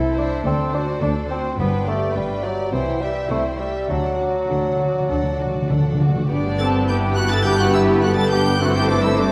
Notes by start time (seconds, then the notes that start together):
Already playing: C2 C4 E4 A4 C5
0.16 D4 E4 C5 E5
0.44 D2 D3 C4 D4 A4 C5
0.74 D4 F#4 C5 D5
1.01 D2 D4 A4 C5
1.29 C4 F#4 C5 D5
1.58 G1 G2 B3 D4 B4 G5
1.87 A3 G4 D5
2.15 G1 G2 G3 D4 B4 G5
2.44 F#3 G4 D5
2.72 C2 C3 E3 E4 C5 G5
3.01 G3 G4 E5
3.30 C2 C3 A3 E4 C5 G5
3.59 G3 G4 E5
3.89 D2 D3 F#3 D4 A4 F#5
3.98 D3
4.19 D3 F#4 D5
4.29 D3
4.37 D3
4.45 D3
4.49 D2 D3 D4 A4 F#5
4.53 D3
4.60 D3
4.68 D3
4.76 D3 F#4
4.81 D3 D5
5.00 D3
5.10 D2 D3 D4 A4 F#5
5.16 D3
5.23 D3
5.30 D3
5.38 D3 F#4 D5
5.46 D3
5.54 D3
5.62 D3
5.69 D2 D3 D4 A4 F#5
5.78 D3
5.86 D3
5.93 D3
5.99 D3 F#4 D5
6.08 D3
6.16 D3
6.29 G1 G2 B3 D4 G4 D5
6.58 C4 A4 A5 A6
6.88 B3 E4 G4 B4 G5 G6
7.15 F#4 F#5 F#6
7.30 A4 A5 A6
7.43 G4 G5 G6
7.59 F#4 F#5 F#6
7.73 E4 E5 E6
8.01 D4 F#4 A4 F#5 F#6
8.16 A4 A5 A6
8.31 G4 G5 G6
8.59 A3 C4 E4 F#4 A4 B4 C5 F#5 F#6
8.74 G4 G5 G6
8.88 D4 D5 D6
9.01 E4 E5 E6
9.17 G3 D4 E4 A4 C5 D5 D6